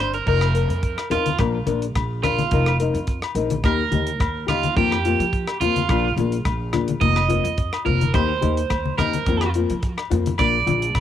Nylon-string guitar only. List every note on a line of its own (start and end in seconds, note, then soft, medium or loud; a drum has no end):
0.00 0.17 C4 soft
0.00 0.17 D4 soft
0.27 0.44 F3 medium
0.27 0.45 C4 medium
0.27 0.45 D#4 medium
0.27 0.45 A#4 medium
0.54 0.74 C4 soft
0.54 0.72 A#4 soft
1.10 1.30 C4 soft
1.10 1.29 D#4 soft
1.10 1.28 A#4 soft
1.39 1.57 F3 medium
1.39 1.57 A#3 medium
1.39 1.57 D4 medium
1.39 1.58 A#4 medium
1.67 1.86 A#3 soft
1.67 1.85 D4 soft
1.67 1.85 A#4 medium
2.23 2.42 D4 soft
2.23 2.41 A#4 soft
2.52 2.70 F3 medium
2.52 2.70 C4 medium
2.52 2.70 D#4 medium
2.52 2.70 A#4 medium
2.80 2.99 C4 soft
2.80 2.98 D#4 soft
2.80 2.98 A#4 medium
3.36 3.55 C4 medium
3.36 3.54 D#4 medium
3.36 3.54 A#4 medium
3.64 3.82 A#3 medium
3.64 3.82 D#4 medium
3.64 3.83 G4 medium
3.92 4.11 D#4 soft
3.92 4.10 G4 medium
4.47 4.67 D#4 soft
4.47 4.65 G4 medium
4.76 4.94 D#3 medium
4.76 4.94 A#3 medium
4.76 4.94 C4 medium
4.76 4.95 F4 medium
5.05 5.24 A#3 soft
5.05 5.23 C4 soft
5.05 5.23 F4 medium
5.62 5.80 A#3 soft
5.62 5.80 C4 soft
5.62 5.79 F4 medium
5.90 6.07 F3 medium
5.90 6.07 A#3 medium
5.90 6.07 D4 medium
5.90 6.08 F4 medium
6.18 6.36 A#3 soft
6.18 6.36 D4 soft
6.18 6.35 F4 medium
6.73 6.91 A#3 soft
6.73 6.91 D4 medium
6.73 6.91 F4 medium
7.00 7.18 D#3 medium
7.00 7.19 A#3 medium
7.00 7.19 F4 medium
7.00 muted nylon-string guitar stroke medium
7.28 7.47 A#3 soft
7.28 7.47 C4 soft
7.28 7.47 F4 medium
7.85 8.04 A#3 soft
7.85 8.04 C4 medium
7.85 8.03 F4 medium
8.13 8.31 D#3 medium
8.13 8.32 A#3 medium
8.13 8.32 D#4 medium
8.13 8.32 G4 medium
8.41 8.61 A#3 soft
8.41 8.60 D#4 soft
8.41 8.59 G4 medium
8.98 9.17 A#3 soft
8.98 9.16 D#4 soft
8.98 9.16 G4 soft
9.27 9.44 D#3 medium
9.27 9.45 A#3 medium
9.27 9.45 C4 medium
9.27 9.45 F4 medium
9.55 9.73 A#3 soft
9.55 9.73 C4 medium
9.55 9.73 F4 medium
10.10 10.29 A#3 soft
10.10 10.29 C4 medium
10.10 10.28 F4 medium
10.39 10.56 A#3 medium
10.39 10.57 D4 medium
10.39 10.57 F4 medium
10.66 10.85 D4 soft
10.66 10.84 F4 medium